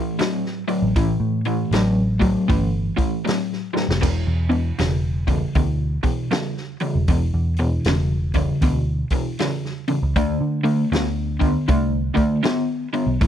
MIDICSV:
0, 0, Header, 1, 4, 480
1, 0, Start_track
1, 0, Key_signature, 3, "major"
1, 0, Tempo, 766284
1, 603, Time_signature, 4, 2, 24, 8
1, 8313, End_track
2, 0, Start_track
2, 0, Title_t, "Overdriven electric guitar"
2, 0, Program_c, 0, 29
2, 0, Note_on_c, 0, 45, 70
2, 0, Note_on_c, 0, 52, 81
2, 103, Note_off_c, 0, 45, 0
2, 107, Note_off_c, 0, 52, 0
2, 118, Note_on_c, 0, 45, 75
2, 121, Note_on_c, 0, 54, 85
2, 395, Note_off_c, 0, 45, 0
2, 397, Note_off_c, 0, 54, 0
2, 424, Note_on_c, 0, 45, 66
2, 427, Note_on_c, 0, 54, 76
2, 584, Note_off_c, 0, 45, 0
2, 585, Note_off_c, 0, 54, 0
2, 603, Note_on_c, 0, 45, 76
2, 607, Note_on_c, 0, 52, 90
2, 878, Note_off_c, 0, 45, 0
2, 880, Note_off_c, 0, 52, 0
2, 913, Note_on_c, 0, 45, 61
2, 916, Note_on_c, 0, 52, 79
2, 1068, Note_off_c, 0, 45, 0
2, 1069, Note_off_c, 0, 52, 0
2, 1083, Note_on_c, 0, 45, 87
2, 1087, Note_on_c, 0, 54, 90
2, 1358, Note_off_c, 0, 45, 0
2, 1360, Note_off_c, 0, 54, 0
2, 1375, Note_on_c, 0, 45, 81
2, 1383, Note_on_c, 0, 54, 83
2, 1539, Note_off_c, 0, 45, 0
2, 1543, Note_off_c, 0, 54, 0
2, 1554, Note_on_c, 0, 45, 83
2, 1564, Note_on_c, 0, 52, 86
2, 1833, Note_off_c, 0, 45, 0
2, 1838, Note_off_c, 0, 52, 0
2, 1859, Note_on_c, 0, 45, 72
2, 1862, Note_on_c, 0, 52, 83
2, 2021, Note_off_c, 0, 45, 0
2, 2023, Note_off_c, 0, 52, 0
2, 2036, Note_on_c, 0, 45, 70
2, 2037, Note_on_c, 0, 54, 89
2, 2314, Note_off_c, 0, 45, 0
2, 2315, Note_off_c, 0, 54, 0
2, 2339, Note_on_c, 0, 45, 71
2, 2340, Note_on_c, 0, 54, 71
2, 2501, Note_off_c, 0, 45, 0
2, 2501, Note_off_c, 0, 54, 0
2, 2514, Note_on_c, 0, 40, 71
2, 2520, Note_on_c, 0, 47, 89
2, 2793, Note_off_c, 0, 40, 0
2, 2796, Note_off_c, 0, 47, 0
2, 2817, Note_on_c, 0, 40, 67
2, 2820, Note_on_c, 0, 47, 75
2, 2980, Note_off_c, 0, 40, 0
2, 2982, Note_off_c, 0, 47, 0
2, 3000, Note_on_c, 0, 40, 75
2, 3006, Note_on_c, 0, 49, 82
2, 3276, Note_off_c, 0, 40, 0
2, 3279, Note_off_c, 0, 49, 0
2, 3302, Note_on_c, 0, 40, 75
2, 3308, Note_on_c, 0, 49, 83
2, 3463, Note_off_c, 0, 40, 0
2, 3465, Note_off_c, 0, 49, 0
2, 3479, Note_on_c, 0, 40, 82
2, 3485, Note_on_c, 0, 47, 84
2, 3756, Note_off_c, 0, 40, 0
2, 3759, Note_off_c, 0, 47, 0
2, 3780, Note_on_c, 0, 47, 80
2, 3781, Note_on_c, 0, 40, 70
2, 3941, Note_off_c, 0, 47, 0
2, 3942, Note_off_c, 0, 40, 0
2, 3955, Note_on_c, 0, 40, 80
2, 3959, Note_on_c, 0, 49, 87
2, 4234, Note_off_c, 0, 40, 0
2, 4236, Note_off_c, 0, 49, 0
2, 4267, Note_on_c, 0, 40, 62
2, 4273, Note_on_c, 0, 49, 69
2, 4425, Note_off_c, 0, 40, 0
2, 4428, Note_off_c, 0, 49, 0
2, 4442, Note_on_c, 0, 40, 85
2, 4451, Note_on_c, 0, 47, 92
2, 4717, Note_off_c, 0, 40, 0
2, 4721, Note_off_c, 0, 47, 0
2, 4756, Note_on_c, 0, 40, 66
2, 4759, Note_on_c, 0, 47, 66
2, 4909, Note_off_c, 0, 40, 0
2, 4911, Note_off_c, 0, 47, 0
2, 4931, Note_on_c, 0, 40, 77
2, 4937, Note_on_c, 0, 49, 84
2, 5202, Note_off_c, 0, 40, 0
2, 5205, Note_off_c, 0, 49, 0
2, 5230, Note_on_c, 0, 40, 69
2, 5235, Note_on_c, 0, 49, 87
2, 5386, Note_off_c, 0, 40, 0
2, 5389, Note_off_c, 0, 49, 0
2, 5406, Note_on_c, 0, 40, 79
2, 5409, Note_on_c, 0, 47, 97
2, 5679, Note_off_c, 0, 40, 0
2, 5680, Note_off_c, 0, 47, 0
2, 5712, Note_on_c, 0, 40, 68
2, 5717, Note_on_c, 0, 47, 77
2, 5867, Note_off_c, 0, 40, 0
2, 5870, Note_off_c, 0, 47, 0
2, 5886, Note_on_c, 0, 40, 71
2, 5891, Note_on_c, 0, 49, 95
2, 6159, Note_off_c, 0, 40, 0
2, 6161, Note_off_c, 0, 49, 0
2, 6188, Note_on_c, 0, 40, 59
2, 6189, Note_on_c, 0, 49, 67
2, 6345, Note_off_c, 0, 40, 0
2, 6345, Note_off_c, 0, 49, 0
2, 6366, Note_on_c, 0, 57, 97
2, 6368, Note_on_c, 0, 50, 87
2, 6639, Note_off_c, 0, 50, 0
2, 6639, Note_off_c, 0, 57, 0
2, 6664, Note_on_c, 0, 50, 69
2, 6668, Note_on_c, 0, 57, 71
2, 6823, Note_off_c, 0, 50, 0
2, 6825, Note_off_c, 0, 57, 0
2, 6843, Note_on_c, 0, 50, 87
2, 6843, Note_on_c, 0, 59, 84
2, 7116, Note_off_c, 0, 59, 0
2, 7117, Note_off_c, 0, 50, 0
2, 7138, Note_on_c, 0, 59, 88
2, 7140, Note_on_c, 0, 50, 79
2, 7299, Note_off_c, 0, 59, 0
2, 7301, Note_off_c, 0, 50, 0
2, 7316, Note_on_c, 0, 50, 75
2, 7322, Note_on_c, 0, 57, 93
2, 7593, Note_off_c, 0, 50, 0
2, 7596, Note_off_c, 0, 57, 0
2, 7611, Note_on_c, 0, 50, 75
2, 7616, Note_on_c, 0, 57, 90
2, 7775, Note_off_c, 0, 50, 0
2, 7778, Note_off_c, 0, 57, 0
2, 7792, Note_on_c, 0, 50, 81
2, 7796, Note_on_c, 0, 59, 77
2, 8071, Note_off_c, 0, 50, 0
2, 8072, Note_off_c, 0, 59, 0
2, 8102, Note_on_c, 0, 50, 70
2, 8106, Note_on_c, 0, 59, 70
2, 8261, Note_off_c, 0, 50, 0
2, 8263, Note_off_c, 0, 59, 0
2, 8276, Note_on_c, 0, 45, 78
2, 8281, Note_on_c, 0, 52, 77
2, 8313, Note_off_c, 0, 45, 0
2, 8313, Note_off_c, 0, 52, 0
2, 8313, End_track
3, 0, Start_track
3, 0, Title_t, "Picked electric bass"
3, 0, Program_c, 1, 34
3, 516, Note_on_c, 1, 33, 79
3, 589, Note_off_c, 1, 33, 0
3, 600, Note_on_c, 1, 33, 91
3, 729, Note_off_c, 1, 33, 0
3, 751, Note_on_c, 1, 45, 73
3, 1028, Note_off_c, 1, 45, 0
3, 1073, Note_on_c, 1, 33, 97
3, 1480, Note_off_c, 1, 33, 0
3, 1559, Note_on_c, 1, 31, 94
3, 1817, Note_off_c, 1, 31, 0
3, 2435, Note_on_c, 1, 29, 84
3, 2509, Note_off_c, 1, 29, 0
3, 2524, Note_on_c, 1, 28, 98
3, 2652, Note_off_c, 1, 28, 0
3, 2675, Note_on_c, 1, 40, 73
3, 2950, Note_off_c, 1, 40, 0
3, 3004, Note_on_c, 1, 28, 94
3, 3406, Note_off_c, 1, 28, 0
3, 3483, Note_on_c, 1, 38, 92
3, 3739, Note_off_c, 1, 38, 0
3, 4355, Note_on_c, 1, 28, 83
3, 4429, Note_off_c, 1, 28, 0
3, 4439, Note_on_c, 1, 28, 102
3, 4569, Note_off_c, 1, 28, 0
3, 4597, Note_on_c, 1, 40, 83
3, 4871, Note_off_c, 1, 40, 0
3, 4920, Note_on_c, 1, 28, 106
3, 5324, Note_off_c, 1, 28, 0
3, 5396, Note_on_c, 1, 38, 86
3, 5655, Note_off_c, 1, 38, 0
3, 6282, Note_on_c, 1, 37, 78
3, 6352, Note_off_c, 1, 37, 0
3, 6364, Note_on_c, 1, 38, 104
3, 6491, Note_off_c, 1, 38, 0
3, 6519, Note_on_c, 1, 50, 77
3, 6792, Note_off_c, 1, 50, 0
3, 6841, Note_on_c, 1, 38, 97
3, 7244, Note_off_c, 1, 38, 0
3, 7322, Note_on_c, 1, 36, 89
3, 7578, Note_off_c, 1, 36, 0
3, 8184, Note_on_c, 1, 35, 81
3, 8261, Note_off_c, 1, 35, 0
3, 8273, Note_on_c, 1, 33, 109
3, 8313, Note_off_c, 1, 33, 0
3, 8313, End_track
4, 0, Start_track
4, 0, Title_t, "Drums"
4, 120, Note_on_c, 9, 46, 61
4, 129, Note_on_c, 9, 38, 97
4, 182, Note_off_c, 9, 46, 0
4, 192, Note_off_c, 9, 38, 0
4, 287, Note_on_c, 9, 38, 32
4, 350, Note_off_c, 9, 38, 0
4, 430, Note_on_c, 9, 46, 49
4, 492, Note_off_c, 9, 46, 0
4, 601, Note_on_c, 9, 36, 102
4, 601, Note_on_c, 9, 46, 63
4, 663, Note_off_c, 9, 46, 0
4, 664, Note_off_c, 9, 36, 0
4, 908, Note_on_c, 9, 46, 47
4, 971, Note_off_c, 9, 46, 0
4, 1079, Note_on_c, 9, 46, 62
4, 1089, Note_on_c, 9, 38, 83
4, 1142, Note_off_c, 9, 46, 0
4, 1151, Note_off_c, 9, 38, 0
4, 1387, Note_on_c, 9, 36, 75
4, 1388, Note_on_c, 9, 46, 50
4, 1450, Note_off_c, 9, 36, 0
4, 1451, Note_off_c, 9, 46, 0
4, 1563, Note_on_c, 9, 36, 108
4, 1563, Note_on_c, 9, 46, 59
4, 1626, Note_off_c, 9, 36, 0
4, 1626, Note_off_c, 9, 46, 0
4, 1867, Note_on_c, 9, 46, 49
4, 1868, Note_on_c, 9, 36, 74
4, 1930, Note_off_c, 9, 46, 0
4, 1931, Note_off_c, 9, 36, 0
4, 2050, Note_on_c, 9, 46, 64
4, 2059, Note_on_c, 9, 38, 105
4, 2112, Note_off_c, 9, 46, 0
4, 2122, Note_off_c, 9, 38, 0
4, 2209, Note_on_c, 9, 38, 32
4, 2272, Note_off_c, 9, 38, 0
4, 2358, Note_on_c, 9, 38, 52
4, 2421, Note_off_c, 9, 38, 0
4, 2445, Note_on_c, 9, 38, 87
4, 2508, Note_off_c, 9, 38, 0
4, 2523, Note_on_c, 9, 36, 96
4, 2525, Note_on_c, 9, 46, 59
4, 2525, Note_on_c, 9, 49, 77
4, 2586, Note_off_c, 9, 36, 0
4, 2587, Note_off_c, 9, 46, 0
4, 2587, Note_off_c, 9, 49, 0
4, 2827, Note_on_c, 9, 46, 41
4, 2890, Note_off_c, 9, 46, 0
4, 2998, Note_on_c, 9, 46, 60
4, 3007, Note_on_c, 9, 38, 82
4, 3060, Note_off_c, 9, 46, 0
4, 3070, Note_off_c, 9, 38, 0
4, 3305, Note_on_c, 9, 36, 78
4, 3305, Note_on_c, 9, 46, 45
4, 3368, Note_off_c, 9, 36, 0
4, 3368, Note_off_c, 9, 46, 0
4, 3476, Note_on_c, 9, 46, 55
4, 3479, Note_on_c, 9, 36, 99
4, 3539, Note_off_c, 9, 46, 0
4, 3542, Note_off_c, 9, 36, 0
4, 3778, Note_on_c, 9, 46, 47
4, 3783, Note_on_c, 9, 36, 81
4, 3841, Note_off_c, 9, 46, 0
4, 3845, Note_off_c, 9, 36, 0
4, 3954, Note_on_c, 9, 46, 54
4, 3963, Note_on_c, 9, 38, 100
4, 4016, Note_off_c, 9, 46, 0
4, 4026, Note_off_c, 9, 38, 0
4, 4116, Note_on_c, 9, 38, 31
4, 4179, Note_off_c, 9, 38, 0
4, 4259, Note_on_c, 9, 46, 50
4, 4321, Note_off_c, 9, 46, 0
4, 4433, Note_on_c, 9, 46, 68
4, 4436, Note_on_c, 9, 36, 104
4, 4495, Note_off_c, 9, 46, 0
4, 4499, Note_off_c, 9, 36, 0
4, 4739, Note_on_c, 9, 46, 45
4, 4801, Note_off_c, 9, 46, 0
4, 4914, Note_on_c, 9, 46, 61
4, 4923, Note_on_c, 9, 38, 99
4, 4976, Note_off_c, 9, 46, 0
4, 4986, Note_off_c, 9, 38, 0
4, 5222, Note_on_c, 9, 46, 53
4, 5225, Note_on_c, 9, 36, 76
4, 5285, Note_off_c, 9, 46, 0
4, 5287, Note_off_c, 9, 36, 0
4, 5397, Note_on_c, 9, 46, 68
4, 5400, Note_on_c, 9, 36, 99
4, 5459, Note_off_c, 9, 46, 0
4, 5463, Note_off_c, 9, 36, 0
4, 5702, Note_on_c, 9, 46, 48
4, 5705, Note_on_c, 9, 36, 70
4, 5764, Note_off_c, 9, 46, 0
4, 5768, Note_off_c, 9, 36, 0
4, 5880, Note_on_c, 9, 46, 72
4, 5890, Note_on_c, 9, 38, 98
4, 5943, Note_off_c, 9, 46, 0
4, 5952, Note_off_c, 9, 38, 0
4, 6046, Note_on_c, 9, 38, 30
4, 6108, Note_off_c, 9, 38, 0
4, 6187, Note_on_c, 9, 46, 52
4, 6249, Note_off_c, 9, 46, 0
4, 6364, Note_on_c, 9, 36, 98
4, 6364, Note_on_c, 9, 46, 63
4, 6426, Note_off_c, 9, 36, 0
4, 6426, Note_off_c, 9, 46, 0
4, 6673, Note_on_c, 9, 46, 47
4, 6736, Note_off_c, 9, 46, 0
4, 6847, Note_on_c, 9, 46, 57
4, 6857, Note_on_c, 9, 38, 93
4, 6910, Note_off_c, 9, 46, 0
4, 6919, Note_off_c, 9, 38, 0
4, 7149, Note_on_c, 9, 36, 82
4, 7151, Note_on_c, 9, 46, 43
4, 7212, Note_off_c, 9, 36, 0
4, 7214, Note_off_c, 9, 46, 0
4, 7317, Note_on_c, 9, 46, 64
4, 7322, Note_on_c, 9, 36, 104
4, 7380, Note_off_c, 9, 46, 0
4, 7384, Note_off_c, 9, 36, 0
4, 7621, Note_on_c, 9, 46, 45
4, 7625, Note_on_c, 9, 36, 73
4, 7684, Note_off_c, 9, 46, 0
4, 7687, Note_off_c, 9, 36, 0
4, 7791, Note_on_c, 9, 46, 54
4, 7800, Note_on_c, 9, 38, 100
4, 7853, Note_off_c, 9, 46, 0
4, 7863, Note_off_c, 9, 38, 0
4, 8103, Note_on_c, 9, 46, 45
4, 8166, Note_off_c, 9, 46, 0
4, 8274, Note_on_c, 9, 46, 66
4, 8276, Note_on_c, 9, 36, 109
4, 8313, Note_off_c, 9, 36, 0
4, 8313, Note_off_c, 9, 46, 0
4, 8313, End_track
0, 0, End_of_file